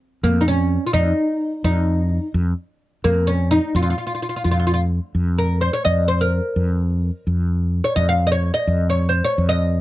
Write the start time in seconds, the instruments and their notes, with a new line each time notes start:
0.23 fretless electric bass F2, oud A#3
0.41 oud D#4
0.48 oud C#4
0.87 oud F4
0.93 fretless electric bass F2, oud D#4
1.64 fretless electric bass F2, oud D#4
2.34 fretless electric bass F2
3.04 fretless electric bass F2, oud A#3
3.27 oud C#4
3.51 oud D#4
3.75 fretless electric bass F2, oud F4
3.83 oud F4
3.90 oud F4
3.98 oud F4
4.07 oud F4
4.15 oud F4
4.22 oud F4
4.29 oud F4
4.36 oud F4
4.44 fretless electric bass F2, oud F4
4.51 oud F4
4.60 oud F4
4.67 oud F4
4.74 oud F4
5.15 fretless electric bass F2
5.38 oud A#4
5.61 oud C5
5.73 oud C#5
5.85 fretless electric bass F2, oud D#5
6.08 oud C5
6.21 oud A#4
6.56 fretless electric bass F2
7.27 fretless electric bass F2
7.84 oud C#5
7.96 fretless electric bass F2, oud D#5
8.09 oud F5
8.27 oud D#5
8.32 oud C#5
8.54 oud D#5
8.67 fretless electric bass F2
8.90 oud C#5
9.09 oud C5
9.24 oud C#5
9.38 fretless electric bass F2
9.49 oud D#5